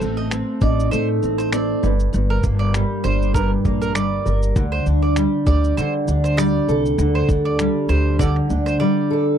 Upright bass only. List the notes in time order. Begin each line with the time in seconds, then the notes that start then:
0.01 A1
0.62 A1
0.92 A2
1.23 A1
1.83 G1
2.14 G1
2.44 G1
3.05 G1
3.65 A#1
3.96 G1
4.26 G1
4.56 D2
4.86 D2
5.47 D2
5.78 D3
6.08 D2
6.68 C2
6.98 D2
7.29 D2
7.89 D2
8.50 D2